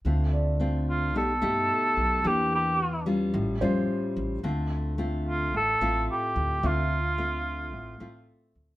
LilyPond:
<<
  \new Staff \with { instrumentName = "Grand piano" } { \time 4/4 \key d \minor \tempo 4 = 109 r8 d''4. r2 | r2 r8 bis'4. | r1 | e''4. r2 r8 | }
  \new Staff \with { instrumentName = "Cor anglais" } { \time 4/4 \key d \minor r4. f'8 a'2 | g'8 g'4 r2 r8 | r4. f'8 a'4 g'4 | f'2. r4 | }
  \new Staff \with { instrumentName = "Nylon-string guitar" } { \time 4/4 \key d \minor << { <a c' f'>4 <a c' f'>4 <a dis' g'>8 <a dis' g'>4. | <bes d' g'>4 r8 <g cis' f'>4 <g cis' eis'>4. | <a c' f'>4 <a c' f'>4 r8 <a c' f'>4. | <a c' f'>8 r8 <a c' f'>4. <a c' f'>4. | } \\ { d2 b,2 | e2 a,2 | d2 a,2 | d2 a,2 | } >> }
  \new Staff \with { instrumentName = "Upright bass" } { \clef bass \time 4/4 \key d \minor d,2 b,,8 g,8 r8 b,,8 | e,2 a,,8 eis,8 r8 a,,8 | d,2 a,,8 a,,8 r8 d,8 | d,2 a,,8 a,,8 r8 d,8 | }
>>